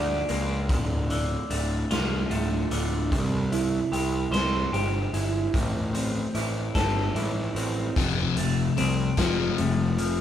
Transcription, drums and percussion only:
0.29 closed hi-hat medium
0.69 kick loud
0.69 closed hi-hat medium
1.10 closed hi-hat medium
1.51 closed hi-hat medium
1.91 snare loud
1.91 closed hi-hat medium
2.31 closed hi-hat medium
2.71 closed hi-hat medium
3.12 kick loud
3.12 closed hi-hat medium
3.52 closed hi-hat medium
3.93 closed hi-hat medium
4.34 snare loud
4.34 closed hi-hat medium
4.74 closed hi-hat soft
5.14 closed hi-hat medium
5.54 kick loud
5.54 closed hi-hat medium
5.95 closed hi-hat medium
6.35 closed hi-hat soft
6.75 kick medium
6.75 snare loud
6.75 closed hi-hat medium
7.16 closed hi-hat medium
7.56 closed hi-hat medium
7.96 kick loud
7.96 closed hi-hat medium
8.37 closed hi-hat medium
8.78 closed hi-hat medium
9.17 kick medium
9.17 snare loud
9.17 closed hi-hat medium
9.58 closed hi-hat medium
9.98 closed hi-hat medium

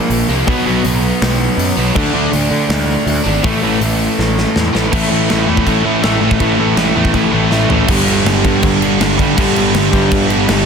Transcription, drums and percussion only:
0.10 open hi-hat medium
0.47 kick loud
0.47 open hi-hat medium
0.84 open hi-hat medium
1.22 snare loud
1.22 open hi-hat medium
1.59 open hi-hat medium
1.96 kick loud
1.96 crash loud
2.33 open hi-hat medium
2.70 snare loud
2.70 open hi-hat medium
3.08 open hi-hat medium
3.44 kick loud
3.44 open hi-hat medium
3.81 open hi-hat medium
4.19 snare medium
4.38 snare medium
4.56 snare medium
4.75 snare medium
4.93 kick loud
4.93 crash loud
4.93 crash medium
5.30 snare loud
5.30 crash medium
5.57 kick medium
5.67 kick medium
5.67 crash medium
6.03 snare loud
6.03 crash medium
6.31 kick medium
6.40 kick loud
6.40 crash medium
6.77 snare loud
6.77 crash medium
7.05 kick medium
7.14 kick medium
7.14 crash medium
7.51 snare medium
7.70 floor tom medium
7.88 kick loud
7.88 crash loud
7.88 crash medium
8.08 crash medium
8.26 snare loud
8.26 crash medium
8.44 kick medium
8.44 crash medium
8.63 kick loud
8.63 crash medium
8.82 crash medium
9.01 snare loud
9.01 crash loud
9.19 kick medium
9.19 crash medium
9.38 kick loud
9.38 crash loud
9.56 crash medium
9.74 snare loud
9.74 crash loud
9.93 kick medium
9.93 crash medium
10.11 kick loud
10.11 crash medium
10.30 crash medium
10.49 snare loud
10.49 crash medium

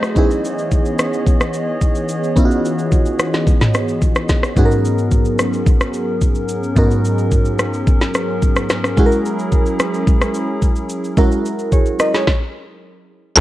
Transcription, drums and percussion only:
0.03 cross-stick medium
0.03 shaker soft
0.16 kick loud
0.16 shaker medium
0.31 shaker medium
0.45 shaker medium
0.58 shaker medium
0.71 kick medium
0.71 shaker medium
0.85 shaker medium
0.99 cross-stick loud
0.99 shaker loud
1.14 shaker medium
1.27 kick loud
1.27 shaker medium
1.41 cross-stick medium
1.41 shaker medium
1.54 shaker medium
1.81 kick medium
1.81 shaker medium
1.95 shaker medium
2.09 shaker loud
2.24 shaker soft
2.37 kick loud
2.37 shaker medium
2.51 shaker medium
2.65 shaker medium
2.79 shaker medium
2.92 kick medium
2.92 shaker medium
3.05 shaker medium
3.19 cross-stick medium
3.19 shaker loud
3.34 snare medium
3.34 shaker medium
3.47 kick loud
3.47 shaker medium
3.61 snare medium
3.61 mid tom medium
3.61 shaker medium
3.74 cross-stick medium
3.74 shaker medium
3.88 shaker medium
4.01 kick medium
4.01 shaker medium
4.15 cross-stick medium
4.15 shaker medium
4.29 kick medium
4.29 snare medium
4.29 shaker loud
4.43 cross-stick medium
4.43 shaker soft
4.57 kick loud
4.57 shaker medium
4.71 shaker medium
4.85 shaker medium
4.99 shaker medium
5.11 kick medium
5.11 shaker medium
5.25 shaker medium
5.39 cross-stick medium
5.39 shaker loud
5.54 shaker medium
5.67 kick loud
5.67 shaker medium
5.81 cross-stick medium
5.81 shaker medium
5.94 shaker medium
6.21 kick medium
6.21 shaker medium
6.35 shaker medium
6.49 shaker loud
6.64 shaker soft
6.77 kick loud
6.77 shaker medium
6.91 shaker medium
7.05 shaker medium
7.19 shaker medium
7.32 kick medium
7.32 shaker medium
7.45 shaker medium
7.59 cross-stick medium
7.59 shaker loud
7.74 shaker medium
7.87 kick loud
7.87 shaker medium
8.01 snare medium
8.01 shaker medium
8.14 cross-stick medium
8.14 shaker medium
8.42 kick medium
8.42 shaker medium
8.56 cross-stick medium
8.56 shaker medium
8.69 cross-stick loud
8.69 snare medium
8.69 shaker loud
8.84 cross-stick medium
8.84 shaker soft
8.97 kick loud
8.97 shaker medium
9.11 shaker medium
9.25 shaker medium
9.39 shaker medium
9.52 kick loud
9.52 shaker medium
9.66 shaker medium
9.80 cross-stick loud
9.80 shaker loud
9.94 shaker medium
10.07 kick loud
10.07 shaker medium
10.21 cross-stick medium
10.21 shaker medium
10.34 shaker medium
10.62 kick medium
10.62 shaker medium
10.76 shaker medium
10.89 shaker loud
11.04 shaker medium
11.17 kick loud
11.17 shaker medium
11.32 shaker medium
11.46 shaker medium
11.59 shaker medium
11.72 kick loud
11.72 shaker medium
11.86 shaker medium
12.00 cross-stick medium
12.00 shaker loud
12.14 snare medium
12.14 shaker medium
12.27 kick loud
12.27 snare medium
13.37 kick loud
13.37 shaker medium

